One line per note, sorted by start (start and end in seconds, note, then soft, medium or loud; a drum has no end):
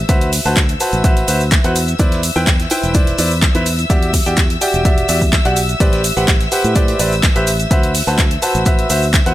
0.00 9.34 E5 medium
0.00 9.34 E6 medium
0.09 0.38 D2 medium
0.09 0.29 F#4 medium
0.09 0.29 B4 medium
0.09 0.29 C5 medium
0.09 0.29 E5 loud
0.09 kick loud
0.09 closed hi-hat medium
0.09 tambourine medium
0.09 cabasa soft
0.09 shaker medium
0.21 closed hi-hat medium
0.21 tambourine soft
0.33 open hi-hat loud
0.33 open hi-hat medium
0.33 tambourine medium
0.33 cabasa medium
0.45 0.74 D2 medium
0.45 0.57 F#4 medium
0.45 0.57 B4 medium
0.45 0.57 C5 medium
0.45 0.57 A5 medium
0.45 closed hi-hat soft
0.45 tambourine soft
0.45 cabasa soft
0.56 kick loud
0.56 snare loud
0.56 clap loud
0.56 closed hi-hat medium
0.56 tambourine medium
0.56 cabasa soft
0.56 shaker medium
0.69 closed hi-hat soft
0.69 closed hi-hat medium
0.80 1.02 F#4 medium
0.80 1.02 B4 medium
0.80 1.02 C5 medium
0.80 1.02 A5 medium
0.80 open hi-hat medium
0.80 tambourine medium
0.80 cabasa medium
0.80 shaker medium
0.92 1.22 A1 loud
0.92 closed hi-hat soft
0.92 tambourine soft
0.92 cabasa soft
1.04 1.25 F#4 medium
1.04 1.25 B4 medium
1.04 1.25 C5 medium
1.04 1.25 E5 medium
1.04 kick loud
1.04 closed hi-hat medium
1.04 tambourine medium
1.04 cabasa soft
1.04 shaker medium
1.17 closed hi-hat medium
1.17 tambourine soft
1.28 1.57 D2 medium
1.28 1.41 F#4 medium
1.28 1.41 B4 medium
1.28 1.41 C5 medium
1.28 1.41 E5 medium
1.28 open hi-hat loud
1.28 tambourine medium
1.28 cabasa medium
1.28 shaker medium
1.40 tambourine soft
1.40 cabasa soft
1.51 kick loud
1.51 snare loud
1.51 clap loud
1.51 closed hi-hat medium
1.51 tambourine medium
1.51 cabasa soft
1.51 shaker loud
1.64 1.93 E2 loud
1.64 1.74 F#4 medium
1.64 1.74 B4 medium
1.64 1.74 C5 medium
1.64 1.74 F#5 loud
1.64 closed hi-hat soft
1.64 closed hi-hat medium
1.76 open hi-hat medium
1.76 tambourine loud
1.76 cabasa medium
1.76 shaker medium
1.88 closed hi-hat soft
1.88 tambourine soft
1.88 cabasa soft
1.99 2.29 E2 loud
1.99 2.19 E4 medium
1.99 2.19 B4 medium
1.99 2.19 C5 medium
1.99 2.19 D5 loud
1.99 kick loud
1.99 closed hi-hat medium
1.99 tambourine medium
1.99 cabasa soft
1.99 shaker medium
2.12 snare soft
2.12 closed hi-hat soft
2.12 tambourine soft
2.23 open hi-hat loud
2.23 tambourine medium
2.23 cabasa medium
2.23 shaker medium
2.35 2.65 E2 medium
2.35 2.47 E4 medium
2.35 2.47 B4 medium
2.35 2.47 C5 medium
2.35 2.47 G5 medium
2.35 snare soft
2.35 tambourine soft
2.35 cabasa soft
2.47 kick loud
2.47 snare loud
2.47 clap loud
2.47 closed hi-hat medium
2.47 tambourine soft
2.47 cabasa soft
2.47 shaker medium
2.60 snare soft
2.60 closed hi-hat medium
2.70 2.92 E4 medium
2.70 2.92 B4 medium
2.70 2.92 C5 medium
2.70 2.92 G5 medium
2.70 open hi-hat loud
2.70 tambourine loud
2.70 cabasa medium
2.70 shaker medium
2.83 3.12 E1 loud
2.83 closed hi-hat soft
2.83 tambourine soft
2.83 cabasa soft
2.94 3.16 E4 medium
2.94 3.16 B4 medium
2.94 3.16 C5 medium
2.94 3.16 D5 medium
2.94 kick loud
2.94 closed hi-hat medium
2.94 tambourine medium
2.94 cabasa soft
2.94 shaker medium
3.07 closed hi-hat soft
3.07 tambourine soft
3.18 3.48 E2 loud
3.18 3.31 E4 medium
3.18 3.31 B4 medium
3.18 3.31 C5 medium
3.18 3.31 D5 medium
3.18 open hi-hat loud
3.18 tambourine loud
3.18 cabasa medium
3.18 shaker medium
3.31 tambourine soft
3.31 cabasa soft
3.42 kick loud
3.42 snare loud
3.42 clap loud
3.42 closed hi-hat medium
3.42 tambourine medium
3.42 cabasa soft
3.42 shaker medium
3.55 3.84 E2 loud
3.55 3.65 E4 medium
3.55 3.65 B4 medium
3.55 3.65 C5 medium
3.55 3.65 E5 medium
3.55 closed hi-hat medium
3.55 closed hi-hat soft
3.66 open hi-hat loud
3.66 tambourine medium
3.66 cabasa medium
3.66 shaker medium
3.79 closed hi-hat soft
3.79 tambourine soft
3.79 cabasa soft
3.90 4.19 E2 medium
3.90 4.10 F#4 medium
3.90 4.10 G4 medium
3.90 4.10 D5 medium
3.90 4.10 E5 loud
3.90 kick loud
3.90 closed hi-hat medium
3.90 tambourine medium
3.90 cabasa soft
3.90 shaker medium
4.02 closed hi-hat soft
4.02 tambourine soft
4.13 kick medium
4.13 open hi-hat medium
4.13 open hi-hat loud
4.13 tambourine loud
4.13 cabasa medium
4.26 4.55 E2 medium
4.26 4.38 F#4 medium
4.26 4.38 G4 medium
4.26 4.38 D5 medium
4.26 4.38 G5 medium
4.26 closed hi-hat soft
4.26 tambourine soft
4.26 cabasa soft
4.37 kick loud
4.37 snare loud
4.37 clap loud
4.37 closed hi-hat medium
4.37 tambourine soft
4.37 cabasa soft
4.37 shaker loud
4.50 closed hi-hat soft
4.61 4.82 F#4 medium
4.61 4.82 G4 medium
4.61 4.82 D5 medium
4.61 4.82 G5 medium
4.61 open hi-hat loud
4.61 tambourine loud
4.61 cabasa medium
4.61 shaker medium
4.74 5.03 E1 loud
4.74 closed hi-hat soft
4.74 tambourine soft
4.74 cabasa soft
4.85 5.06 F#4 medium
4.85 5.06 G4 medium
4.85 5.06 D5 medium
4.85 5.06 E5 loud
4.85 kick loud
4.85 closed hi-hat medium
4.85 tambourine soft
4.85 cabasa soft
4.85 shaker medium
4.98 closed hi-hat soft
4.98 tambourine soft
5.08 5.38 E2 loud
5.08 5.22 F#4 medium
5.08 5.22 G4 medium
5.08 5.22 D5 medium
5.08 5.22 E5 medium
5.08 open hi-hat loud
5.08 tambourine medium
5.08 cabasa medium
5.08 shaker medium
5.21 kick medium
5.21 tambourine soft
5.21 cabasa soft
5.33 kick loud
5.33 snare loud
5.33 clap loud
5.33 closed hi-hat medium
5.33 tambourine medium
5.33 cabasa soft
5.33 shaker medium
5.45 5.74 B1 medium
5.45 5.57 F#4 medium
5.45 5.57 G4 medium
5.45 5.57 D5 medium
5.45 5.57 F#5 loud
5.45 closed hi-hat medium
5.45 closed hi-hat soft
5.45 tambourine soft
5.56 open hi-hat medium
5.56 tambourine medium
5.56 cabasa medium
5.56 shaker medium
5.69 closed hi-hat soft
5.69 tambourine soft
5.69 cabasa soft
5.80 6.10 A1 medium
5.80 6.00 G4 loud
5.80 6.00 B4 medium
5.80 6.00 C5 medium
5.80 6.00 D5 loud
5.80 kick loud
5.80 closed hi-hat medium
5.80 tambourine soft
5.80 cabasa soft
5.80 shaker medium
5.92 snare soft
5.92 closed hi-hat soft
5.92 tambourine soft
6.04 open hi-hat loud
6.04 tambourine medium
6.04 cabasa medium
6.04 shaker medium
6.16 6.46 A1 medium
6.16 6.28 G4 medium
6.16 6.28 B4 medium
6.16 6.28 C5 medium
6.16 6.28 F#5 medium
6.16 snare soft
6.16 tambourine soft
6.16 cabasa soft
6.28 kick loud
6.28 snare loud
6.28 clap loud
6.28 closed hi-hat medium
6.28 tambourine medium
6.28 cabasa soft
6.28 shaker medium
6.41 snare soft
6.41 closed hi-hat soft
6.51 6.73 G4 medium
6.51 6.73 B4 medium
6.51 6.73 C5 medium
6.51 6.73 F#5 medium
6.51 open hi-hat medium
6.51 tambourine medium
6.51 cabasa medium
6.51 shaker medium
6.64 6.93 A2 medium
6.64 closed hi-hat soft
6.64 tambourine soft
6.64 cabasa soft
6.75 6.97 G4 medium
6.75 6.97 B4 medium
6.75 6.97 C5 medium
6.75 6.97 D5 medium
6.75 kick loud
6.75 closed hi-hat medium
6.75 tambourine medium
6.75 cabasa soft
6.75 shaker medium
6.88 closed hi-hat soft
6.88 tambourine soft
6.99 7.29 A1 loud
6.99 7.12 G4 medium
6.99 7.12 B4 medium
6.99 7.12 C5 medium
6.99 7.12 D5 medium
6.99 open hi-hat loud
6.99 tambourine medium
6.99 cabasa medium
6.99 shaker medium
7.12 tambourine soft
7.12 cabasa soft
7.23 kick loud
7.23 snare loud
7.23 clap loud
7.23 closed hi-hat medium
7.23 tambourine soft
7.23 cabasa soft
7.23 shaker medium
7.36 7.65 A1 loud
7.36 7.47 G4 medium
7.36 7.47 B4 medium
7.36 7.47 C5 medium
7.36 7.47 E5 loud
7.36 closed hi-hat soft
7.36 closed hi-hat medium
7.47 open hi-hat loud
7.47 tambourine medium
7.47 cabasa medium
7.47 shaker medium
7.60 closed hi-hat soft
7.60 tambourine soft
7.60 cabasa soft
7.71 8.00 D2 medium
7.71 7.91 F#4 medium
7.71 7.91 B4 medium
7.71 7.91 C5 medium
7.71 7.91 E5 loud
7.71 kick loud
7.71 closed hi-hat medium
7.71 tambourine soft
7.71 cabasa soft
7.71 shaker medium
7.83 closed hi-hat medium
7.83 tambourine soft
7.94 open hi-hat medium
7.94 open hi-hat loud
7.94 tambourine medium
7.94 cabasa medium
8.07 8.36 D2 medium
8.07 8.19 F#4 medium
8.07 8.19 B4 medium
8.07 8.19 C5 medium
8.07 8.19 A5 medium
8.07 closed hi-hat soft
8.07 tambourine soft
8.07 cabasa soft
8.18 kick loud
8.18 snare loud
8.18 clap loud
8.18 closed hi-hat medium
8.18 tambourine soft
8.18 cabasa soft
8.18 shaker medium
8.31 closed hi-hat soft
8.31 closed hi-hat medium
8.42 8.63 F#4 medium
8.42 8.63 B4 medium
8.42 8.63 C5 medium
8.42 8.63 A5 medium
8.42 open hi-hat medium
8.42 tambourine medium
8.42 cabasa medium
8.42 shaker medium
8.55 8.84 A1 loud
8.55 closed hi-hat soft
8.55 tambourine soft
8.55 cabasa soft
8.66 8.87 F#4 medium
8.66 8.87 B4 medium
8.66 8.87 C5 medium
8.66 8.87 E5 loud
8.66 kick loud
8.66 closed hi-hat medium
8.66 tambourine medium
8.66 cabasa soft
8.66 shaker medium
8.79 closed hi-hat medium
8.79 tambourine soft
8.90 9.19 D2 medium
8.90 9.03 F#4 medium
8.90 9.03 B4 medium
8.90 9.03 C5 medium
8.90 9.03 E5 medium
8.90 open hi-hat loud
8.90 tambourine medium
8.90 cabasa medium
8.90 shaker medium
9.02 tambourine soft
9.02 cabasa soft
9.13 kick loud
9.13 snare loud
9.13 clap loud
9.13 closed hi-hat medium
9.13 tambourine soft
9.13 cabasa soft
9.13 shaker medium
9.26 9.34 E2 loud
9.26 9.34 F#4 medium
9.26 9.34 B4 medium
9.26 9.34 C5 medium
9.26 9.34 F#5 loud
9.26 closed hi-hat medium
9.26 closed hi-hat soft